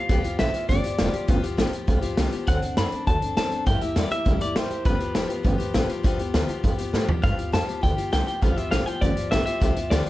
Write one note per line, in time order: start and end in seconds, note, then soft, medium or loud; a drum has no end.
0.00 0.39 F5 loud
0.09 0.23 B1 medium
0.09 0.24 G2 loud
0.09 0.25 D3 medium
0.09 0.25 F3 medium
0.09 0.25 B3 loud
0.09 0.23 F4 loud
0.09 0.22 G4 loud
0.09 kick loud
0.09 closed hi-hat loud
0.23 0.39 F3 soft
0.23 0.39 B3 medium
0.23 0.39 F4 medium
0.23 0.39 G4 medium
0.23 muted upright bass stroke medium
0.23 closed hi-hat medium
0.39 0.53 A1 medium
0.39 0.54 G2 medium
0.39 0.54 D3 medium
0.39 0.54 F3 medium
0.39 0.54 B3 medium
0.39 0.53 F4 medium
0.39 0.52 G4 loud
0.39 0.68 E5 medium
0.39 snare loud
0.39 closed hi-hat medium
0.53 0.67 F3 soft
0.53 0.68 B3 soft
0.53 0.69 F4 soft
0.53 0.68 G4 soft
0.53 muted upright bass stroke medium
0.53 closed hi-hat medium
0.68 0.83 G1 medium
0.68 0.84 F3 medium
0.68 0.84 B3 medium
0.68 0.84 F4 medium
0.68 0.82 G4 medium
0.68 1.24 D5 medium
0.68 kick loud
0.68 closed hi-hat medium
0.83 0.98 F3 soft
0.83 0.99 B3 soft
0.83 0.99 F4 medium
0.83 0.98 G4 medium
0.83 closed hi-hat medium
0.98 1.13 F1 loud
0.98 1.13 G2 medium
0.98 1.13 D3 medium
0.98 1.14 F3 medium
0.98 1.14 B3 medium
0.98 1.13 F4 medium
0.98 1.11 G4 medium
0.98 snare loud
0.98 closed hi-hat medium
1.13 1.27 F3 medium
1.13 1.28 B3 medium
1.13 1.28 F4 medium
1.13 1.28 G4 medium
1.13 closed hi-hat medium
1.28 1.42 G1 medium
1.28 1.43 G2 medium
1.28 1.43 D3 medium
1.28 1.43 F3 medium
1.28 1.44 B3 loud
1.28 1.43 F4 loud
1.28 1.41 G4 loud
1.28 kick loud
1.28 closed hi-hat loud
1.42 1.57 F3 soft
1.42 1.58 B3 medium
1.42 1.58 F4 medium
1.42 1.58 G4 medium
1.42 closed hi-hat medium
1.57 1.72 A1 medium
1.57 1.73 G2 loud
1.57 1.73 D3 medium
1.57 1.73 F3 loud
1.57 1.74 B3 medium
1.57 1.73 F4 loud
1.57 1.71 G4 loud
1.57 snare loud
1.57 closed hi-hat medium
1.72 1.86 F3 medium
1.72 1.87 B3 soft
1.72 1.88 F4 soft
1.72 1.88 G4 medium
1.72 muted upright bass stroke medium
1.72 closed hi-hat medium
1.87 2.03 B1 loud
1.87 2.03 F3 medium
1.87 2.03 B3 medium
1.87 2.02 F4 medium
1.87 2.00 G4 medium
1.87 kick loud
1.87 closed hi-hat medium
2.01 2.17 F3 medium
2.01 2.17 B3 medium
2.01 2.18 F4 medium
2.01 2.17 G4 medium
2.01 muted upright bass stroke medium
2.01 closed hi-hat medium
2.17 2.32 C2 loud
2.17 2.32 G2 medium
2.17 2.32 D3 medium
2.17 2.33 F3 medium
2.17 2.33 B3 medium
2.17 2.32 F4 medium
2.17 2.30 G4 loud
2.17 snare loud
2.17 closed hi-hat loud
2.31 2.47 F3 medium
2.31 2.48 B3 medium
2.31 2.48 F4 medium
2.31 2.47 G4 medium
2.31 muted upright bass stroke medium
2.31 closed hi-hat medium
2.47 2.62 D2 medium
2.47 2.62 D3 medium
2.47 2.62 F#3 loud
2.47 2.63 C4 loud
2.47 2.62 D4 medium
2.47 2.61 A4 medium
2.47 2.77 F#5 medium
2.47 kick loud
2.47 closed hi-hat medium
2.62 2.77 C4 soft
2.62 2.78 D4 soft
2.62 2.77 A4 medium
2.62 muted upright bass stroke medium
2.62 closed hi-hat medium
2.77 2.92 F#2 loud
2.77 2.92 D3 medium
2.77 2.92 F#3 medium
2.77 2.93 C4 medium
2.77 2.92 D4 medium
2.77 2.90 A4 medium
2.77 3.07 B5 medium
2.77 snare loud
2.77 closed hi-hat medium
2.91 3.07 C4 soft
2.91 3.07 D4 soft
2.91 3.06 A4 soft
2.91 muted upright bass stroke medium
2.91 closed hi-hat medium
3.07 3.21 D2 medium
3.07 3.22 F#3 medium
3.07 3.22 C4 medium
3.07 3.22 D4 medium
3.07 3.20 A4 medium
3.07 3.36 A5 loud
3.07 kick loud
3.07 closed hi-hat medium
3.22 3.37 C4 soft
3.22 3.37 D4 medium
3.22 3.37 A4 medium
3.22 muted upright bass stroke medium
3.22 closed hi-hat medium
3.37 3.51 A2 medium
3.37 3.51 D3 medium
3.37 3.52 F#3 medium
3.37 3.52 C4 medium
3.37 3.51 D4 medium
3.37 3.49 A4 medium
3.37 3.66 A5 loud
3.37 snare loud
3.37 closed hi-hat medium
3.51 3.67 C4 soft
3.51 3.67 D4 medium
3.51 3.66 A4 medium
3.51 muted upright bass stroke soft
3.51 closed hi-hat medium
3.66 3.81 G2 medium
3.66 3.81 C3 medium
3.66 3.81 G3 medium
3.66 3.82 A#3 medium
3.66 3.81 E4 medium
3.66 3.79 G4 loud
3.66 3.82 G5 medium
3.66 kick loud
3.66 closed hi-hat medium
3.81 3.96 A#3 soft
3.81 3.96 E4 soft
3.81 3.96 G4 medium
3.81 3.97 E5 loud
3.81 muted upright bass stroke medium
3.81 closed hi-hat medium
3.96 4.10 E2 medium
3.96 4.11 C3 medium
3.96 4.11 G3 medium
3.96 4.11 A#3 medium
3.96 4.11 E4 medium
3.96 4.09 G4 medium
3.96 4.11 D5 medium
3.96 snare loud
3.96 closed hi-hat medium
4.10 4.25 A#3 soft
4.10 4.27 E4 soft
4.10 4.25 G4 soft
4.10 4.41 E5 loud
4.10 muted upright bass stroke medium
4.10 closed hi-hat medium
4.25 4.40 C2 loud
4.25 4.40 G3 medium
4.25 4.41 A#3 medium
4.25 4.41 E4 medium
4.25 4.39 G4 medium
4.25 kick loud
4.25 closed hi-hat medium
4.40 4.56 A#3 soft
4.40 4.56 E4 soft
4.40 4.55 G4 medium
4.40 4.57 D5 medium
4.40 muted upright bass stroke medium
4.40 closed hi-hat medium
4.55 4.69 G#1 medium
4.55 4.70 C3 medium
4.55 4.71 G3 medium
4.55 4.71 A#3 medium
4.55 4.70 E4 medium
4.55 4.69 G4 medium
4.55 4.86 C5 loud
4.55 snare loud
4.55 closed hi-hat medium
4.70 4.86 A#3 soft
4.70 4.86 E4 soft
4.70 4.85 G4 medium
4.70 muted upright bass stroke soft
4.70 closed hi-hat medium
4.85 4.99 G1 medium
4.85 5.00 G2 medium
4.85 5.00 D3 medium
4.85 5.00 F3 medium
4.85 5.00 B3 loud
4.85 4.99 F4 medium
4.85 4.98 G4 loud
4.85 6.90 B4 medium
4.85 kick loud
4.85 closed hi-hat loud
4.99 5.14 F3 soft
4.99 5.14 B3 soft
4.99 5.15 F4 soft
4.99 5.14 G4 medium
4.99 muted upright bass stroke medium
4.99 closed hi-hat medium
5.14 5.29 F1 medium
5.14 5.29 G2 medium
5.14 5.30 D3 medium
5.14 5.30 F3 loud
5.14 5.30 B3 medium
5.14 5.29 F4 medium
5.14 5.27 G4 loud
5.14 snare loud
5.14 closed hi-hat medium
5.29 5.42 F3 soft
5.29 5.43 B3 medium
5.29 5.44 F4 medium
5.29 5.44 G4 medium
5.29 muted upright bass stroke soft
5.29 closed hi-hat medium
5.43 5.59 G1 medium
5.43 5.59 F3 medium
5.43 5.59 B3 medium
5.43 5.58 F4 medium
5.43 5.57 G4 medium
5.43 kick loud
5.43 closed hi-hat medium
5.58 5.73 F3 medium
5.58 5.74 B3 medium
5.58 5.74 F4 medium
5.58 5.74 G4 medium
5.58 muted upright bass stroke medium
5.58 closed hi-hat medium
5.74 5.89 A1 loud
5.74 5.89 G2 medium
5.74 5.89 D3 medium
5.74 5.89 F3 loud
5.74 5.90 B3 medium
5.74 5.88 F4 medium
5.74 5.87 G4 medium
5.74 snare loud
5.74 closed hi-hat medium
5.88 6.03 F3 medium
5.88 6.04 B3 medium
5.88 6.04 F4 medium
5.88 6.04 G4 medium
5.88 muted upright bass stroke medium
5.88 closed hi-hat medium
6.03 6.18 B1 loud
6.03 6.19 G2 loud
6.03 6.19 D3 loud
6.03 6.19 F3 loud
6.03 6.19 B3 loud
6.03 6.19 F4 loud
6.03 6.17 G4 loud
6.03 kick loud
6.03 closed hi-hat medium
6.19 6.34 F3 soft
6.19 6.35 B3 medium
6.19 6.34 F4 medium
6.19 6.34 G4 medium
6.19 muted upright bass stroke soft
6.19 closed hi-hat medium
6.34 6.48 D2 loud
6.34 6.49 G2 medium
6.34 6.49 D3 loud
6.34 6.49 F3 loud
6.34 6.49 B3 loud
6.34 6.48 F4 loud
6.34 6.47 G4 loud
6.34 snare loud
6.34 closed hi-hat medium
6.48 6.62 F3 medium
6.48 6.63 B3 medium
6.48 6.64 F4 medium
6.48 6.63 G4 medium
6.48 muted upright bass stroke medium
6.48 closed hi-hat medium
6.63 6.78 F2 loud
6.63 6.78 F3 medium
6.63 6.79 B3 medium
6.63 6.78 F4 medium
6.63 6.77 G4 medium
6.63 kick loud
6.63 closed hi-hat medium
6.78 6.93 F3 soft
6.78 6.93 B3 medium
6.78 6.94 F4 medium
6.78 6.93 G4 medium
6.78 muted upright bass stroke medium
6.78 closed hi-hat medium
6.93 7.08 G2 medium
6.93 7.08 A2 medium
6.93 7.08 D3 medium
6.93 7.09 F3 medium
6.93 7.08 B3 medium
6.93 7.08 F4 medium
6.93 7.06 G4 loud
6.93 snare medium
7.07 7.22 F3 soft
7.07 7.23 B3 medium
7.07 7.23 F4 medium
7.07 7.23 G4 medium
7.07 muted upright bass stroke medium
7.07 floor tom medium
7.22 7.38 G2 medium
7.22 7.38 G2 loud
7.22 7.38 D3 medium
7.22 7.38 F3 medium
7.22 7.38 B3 loud
7.22 7.37 F4 medium
7.22 7.36 G4 medium
7.22 7.53 F5 medium
7.22 kick loud
7.22 closed hi-hat medium
7.37 7.52 F3 soft
7.37 7.53 B3 soft
7.37 7.53 F4 soft
7.37 7.52 G4 soft
7.37 muted upright bass stroke medium
7.37 closed hi-hat medium
7.52 7.67 F2 medium
7.52 7.67 G2 medium
7.52 7.68 D3 medium
7.52 7.68 F3 medium
7.52 7.68 B3 medium
7.52 7.67 F4 medium
7.52 7.66 G4 medium
7.52 7.83 A5 loud
7.52 snare loud
7.52 closed hi-hat medium
7.67 7.80 F3 soft
7.67 7.82 B3 soft
7.67 7.83 F4 soft
7.67 7.82 G4 medium
7.67 muted upright bass stroke medium
7.67 closed hi-hat medium
7.81 7.97 D2 medium
7.81 7.97 F3 medium
7.81 7.98 B3 medium
7.81 7.97 F4 medium
7.81 7.95 G4 medium
7.81 8.12 G5 loud
7.81 kick medium
7.81 closed hi-hat medium
7.97 8.12 F3 soft
7.97 8.12 B3 soft
7.97 8.13 F4 medium
7.97 8.12 G4 medium
7.97 closed hi-hat medium
8.12 8.27 C2 medium
8.12 8.27 G2 medium
8.12 8.27 D3 medium
8.12 8.27 F3 medium
8.12 8.27 B3 medium
8.12 8.26 F4 medium
8.12 8.25 G4 medium
8.12 8.26 G5 loud
8.12 snare loud
8.12 closed hi-hat medium
8.26 8.42 F3 soft
8.26 8.42 B3 soft
8.26 8.42 F4 medium
8.26 8.42 G4 medium
8.26 8.42 G5 medium
8.26 closed hi-hat medium
8.42 8.57 B1 medium
8.42 8.57 G2 medium
8.42 8.57 D3 medium
8.42 8.57 F3 medium
8.42 8.57 B3 loud
8.42 8.56 F4 loud
8.42 8.55 G4 medium
8.42 8.57 F5 medium
8.42 kick loud
8.42 closed hi-hat medium
8.56 8.71 F3 soft
8.56 8.71 B3 soft
8.56 8.72 F4 medium
8.56 8.72 G4 medium
8.56 8.71 E5 medium
8.56 muted upright bass stroke medium
8.56 closed hi-hat medium
8.71 8.86 A1 medium
8.71 8.87 G2 medium
8.71 8.87 D3 medium
8.71 8.87 F3 medium
8.71 8.87 B3 medium
8.71 8.86 F4 medium
8.71 8.85 G4 medium
8.71 8.86 F5 medium
8.71 snare loud
8.71 closed hi-hat medium
8.86 9.00 F3 soft
8.86 9.01 B3 soft
8.86 9.02 F4 medium
8.86 9.01 G4 soft
8.86 9.02 G5 loud
8.86 muted upright bass stroke medium
8.86 closed hi-hat medium
9.01 9.16 G1 loud
9.01 9.17 F3 medium
9.01 9.17 B3 medium
9.01 9.17 F4 medium
9.01 9.15 G4 medium
9.01 9.32 D5 medium
9.01 kick loud
9.01 closed hi-hat medium
9.17 9.32 F3 soft
9.17 9.32 B3 soft
9.17 9.32 F4 medium
9.17 9.32 G4 medium
9.17 muted upright bass stroke medium
9.17 closed hi-hat medium
9.31 9.46 A1 medium
9.31 9.47 G2 medium
9.31 9.47 D3 medium
9.31 9.47 F3 medium
9.31 9.47 B3 medium
9.31 9.46 F4 medium
9.31 9.45 G4 loud
9.31 9.44 E5 loud
9.31 snare loud
9.31 closed hi-hat medium
9.46 9.60 F3 soft
9.46 9.61 B3 soft
9.46 9.61 F4 medium
9.46 9.61 G4 medium
9.46 9.92 E5 medium
9.46 muted upright bass stroke medium
9.46 closed hi-hat medium
9.60 9.75 B1 medium
9.60 9.76 G2 medium
9.60 9.76 D3 loud
9.60 9.76 F3 loud
9.60 9.77 B3 loud
9.60 9.76 F4 medium
9.60 9.74 G4 loud
9.60 kick loud
9.60 closed hi-hat loud
9.75 9.90 F3 soft
9.75 9.91 B3 soft
9.75 9.91 F4 medium
9.75 9.91 G4 medium
9.75 muted upright bass stroke medium
9.75 closed hi-hat medium
9.90 10.05 D2 medium
9.90 10.06 G2 medium
9.90 10.06 D3 medium
9.90 10.06 F3 medium
9.90 10.07 B3 medium
9.90 10.05 F4 medium
9.90 10.04 G4 loud
9.90 10.10 D5 medium
9.90 snare loud
9.90 closed hi-hat loud
10.06 muted upright bass stroke medium
10.06 closed hi-hat medium